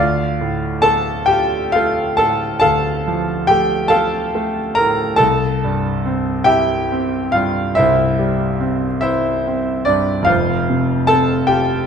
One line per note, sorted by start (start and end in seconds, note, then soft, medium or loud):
0.00 2.61 D2 medium
0.00 0.82 F4 medium
0.00 0.82 D5 medium
0.00 0.85 F5 loud
0.41 1.14 A2 medium
0.82 1.58 A3 medium
0.82 1.27 A4 medium
0.82 1.29 A5 loud
1.26 1.72 F4 medium
1.26 1.72 G4 medium
1.26 1.74 G5 loud
1.72 2.47 A3 medium
1.72 2.16 F4 medium
1.72 2.19 F5 loud
2.17 2.91 A2 medium
2.17 2.60 A4 medium
2.17 2.58 A5 loud
2.60 5.16 D2 medium
2.60 3.45 A4 medium
2.60 3.45 F5 medium
2.60 3.48 A5 loud
3.08 3.76 F3 medium
3.47 4.18 A3 medium
3.47 3.89 G4 medium
3.47 3.91 G5 loud
3.88 4.60 F4 medium
3.88 4.72 A4 medium
3.88 4.72 F5 medium
3.88 4.75 A5 loud
4.35 5.03 A3 medium
4.75 5.21 A2 medium
4.75 5.16 A#4 medium
4.75 5.19 A#5 loud
5.16 7.73 C2 medium
5.16 6.42 A4 medium
5.16 6.46 A5 loud
5.65 6.31 G2 medium
6.05 6.74 C4 medium
6.44 7.17 E4 medium
6.44 7.29 G4 medium
6.44 7.29 E5 medium
6.44 7.33 G5 loud
6.92 7.61 C4 medium
7.32 8.03 G2 medium
7.32 7.73 F4 medium
7.32 7.76 F5 medium
7.75 9.00 E4 medium
7.75 9.00 C5 medium
7.75 8.99 E5 loud
7.79 10.26 C2 medium
8.19 8.87 G3 medium
8.61 9.29 C4 medium
9.01 9.83 E4 medium
9.01 9.84 C5 medium
9.01 9.87 E5 loud
9.47 10.13 C4 medium
9.85 10.25 D4 medium
9.85 10.28 D5 medium
9.89 10.30 G2 medium
10.22 11.87 F2 medium
10.22 11.05 F4 medium
10.22 11.05 C5 medium
10.22 11.08 F5 loud
10.27 11.87 F1 medium
10.70 11.34 C3 medium
11.07 11.75 C4 medium
11.07 11.46 A4 medium
11.07 11.49 A5 loud
11.47 11.87 F4 medium
11.47 11.87 G4 medium
11.47 11.87 G5 medium